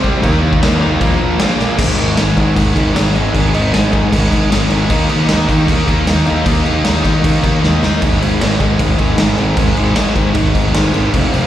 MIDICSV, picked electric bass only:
0, 0, Header, 1, 2, 480
1, 0, Start_track
1, 0, Tempo, 389358
1, 296, Time_signature, 4, 2, 24, 8
1, 14139, End_track
2, 0, Start_track
2, 0, Title_t, "Picked electric bass"
2, 0, Program_c, 0, 34
2, 0, Note_on_c, 0, 48, 98
2, 179, Note_off_c, 0, 48, 0
2, 298, Note_on_c, 0, 39, 99
2, 476, Note_off_c, 0, 39, 0
2, 535, Note_on_c, 0, 39, 76
2, 714, Note_off_c, 0, 39, 0
2, 785, Note_on_c, 0, 39, 90
2, 960, Note_off_c, 0, 39, 0
2, 1029, Note_on_c, 0, 39, 95
2, 1201, Note_off_c, 0, 39, 0
2, 1248, Note_on_c, 0, 34, 101
2, 1428, Note_off_c, 0, 34, 0
2, 1512, Note_on_c, 0, 34, 90
2, 1683, Note_off_c, 0, 34, 0
2, 1743, Note_on_c, 0, 34, 96
2, 1917, Note_off_c, 0, 34, 0
2, 1964, Note_on_c, 0, 34, 97
2, 2145, Note_off_c, 0, 34, 0
2, 2202, Note_on_c, 0, 32, 104
2, 2362, Note_off_c, 0, 32, 0
2, 2450, Note_on_c, 0, 32, 68
2, 2607, Note_off_c, 0, 32, 0
2, 2699, Note_on_c, 0, 32, 84
2, 2854, Note_off_c, 0, 32, 0
2, 2929, Note_on_c, 0, 44, 95
2, 3087, Note_off_c, 0, 44, 0
2, 3173, Note_on_c, 0, 32, 93
2, 3329, Note_off_c, 0, 32, 0
2, 3406, Note_on_c, 0, 32, 87
2, 3565, Note_off_c, 0, 32, 0
2, 3656, Note_on_c, 0, 32, 89
2, 3812, Note_off_c, 0, 32, 0
2, 3889, Note_on_c, 0, 32, 96
2, 4047, Note_off_c, 0, 32, 0
2, 4129, Note_on_c, 0, 32, 98
2, 4287, Note_off_c, 0, 32, 0
2, 4376, Note_on_c, 0, 32, 75
2, 4531, Note_off_c, 0, 32, 0
2, 4609, Note_on_c, 0, 32, 83
2, 4767, Note_off_c, 0, 32, 0
2, 4847, Note_on_c, 0, 44, 88
2, 5005, Note_off_c, 0, 44, 0
2, 5094, Note_on_c, 0, 32, 94
2, 5250, Note_off_c, 0, 32, 0
2, 5334, Note_on_c, 0, 32, 91
2, 5491, Note_off_c, 0, 32, 0
2, 5588, Note_on_c, 0, 32, 93
2, 5740, Note_off_c, 0, 32, 0
2, 5817, Note_on_c, 0, 32, 89
2, 5973, Note_off_c, 0, 32, 0
2, 6044, Note_on_c, 0, 39, 97
2, 6204, Note_off_c, 0, 39, 0
2, 6291, Note_on_c, 0, 39, 70
2, 6449, Note_off_c, 0, 39, 0
2, 6548, Note_on_c, 0, 39, 80
2, 6700, Note_off_c, 0, 39, 0
2, 6765, Note_on_c, 0, 51, 88
2, 6925, Note_off_c, 0, 51, 0
2, 7009, Note_on_c, 0, 39, 103
2, 7167, Note_off_c, 0, 39, 0
2, 7253, Note_on_c, 0, 39, 79
2, 7410, Note_off_c, 0, 39, 0
2, 7505, Note_on_c, 0, 39, 96
2, 7658, Note_off_c, 0, 39, 0
2, 7755, Note_on_c, 0, 39, 89
2, 7905, Note_off_c, 0, 39, 0
2, 7966, Note_on_c, 0, 39, 96
2, 8126, Note_off_c, 0, 39, 0
2, 8248, Note_on_c, 0, 39, 79
2, 8394, Note_off_c, 0, 39, 0
2, 8486, Note_on_c, 0, 39, 82
2, 8633, Note_off_c, 0, 39, 0
2, 8691, Note_on_c, 0, 51, 88
2, 8850, Note_off_c, 0, 51, 0
2, 8928, Note_on_c, 0, 39, 94
2, 9087, Note_off_c, 0, 39, 0
2, 9163, Note_on_c, 0, 39, 83
2, 9325, Note_off_c, 0, 39, 0
2, 9423, Note_on_c, 0, 39, 92
2, 9578, Note_off_c, 0, 39, 0
2, 9656, Note_on_c, 0, 39, 90
2, 9813, Note_off_c, 0, 39, 0
2, 9891, Note_on_c, 0, 32, 86
2, 10051, Note_off_c, 0, 32, 0
2, 10136, Note_on_c, 0, 32, 71
2, 10294, Note_off_c, 0, 32, 0
2, 10374, Note_on_c, 0, 32, 88
2, 10533, Note_off_c, 0, 32, 0
2, 10601, Note_on_c, 0, 44, 88
2, 10764, Note_off_c, 0, 44, 0
2, 10843, Note_on_c, 0, 32, 105
2, 11006, Note_off_c, 0, 32, 0
2, 11084, Note_on_c, 0, 32, 77
2, 11246, Note_off_c, 0, 32, 0
2, 11341, Note_on_c, 0, 32, 88
2, 11498, Note_off_c, 0, 32, 0
2, 11579, Note_on_c, 0, 32, 89
2, 11736, Note_off_c, 0, 32, 0
2, 11803, Note_on_c, 0, 32, 91
2, 11966, Note_off_c, 0, 32, 0
2, 12052, Note_on_c, 0, 32, 75
2, 12212, Note_off_c, 0, 32, 0
2, 12285, Note_on_c, 0, 32, 88
2, 12447, Note_off_c, 0, 32, 0
2, 12525, Note_on_c, 0, 44, 89
2, 12688, Note_off_c, 0, 44, 0
2, 12761, Note_on_c, 0, 32, 95
2, 12926, Note_off_c, 0, 32, 0
2, 13008, Note_on_c, 0, 32, 84
2, 13170, Note_off_c, 0, 32, 0
2, 13236, Note_on_c, 0, 32, 92
2, 13402, Note_off_c, 0, 32, 0
2, 13483, Note_on_c, 0, 32, 94
2, 13647, Note_off_c, 0, 32, 0
2, 13733, Note_on_c, 0, 29, 106
2, 13894, Note_off_c, 0, 29, 0
2, 13989, Note_on_c, 0, 29, 78
2, 14139, Note_off_c, 0, 29, 0
2, 14139, End_track
0, 0, End_of_file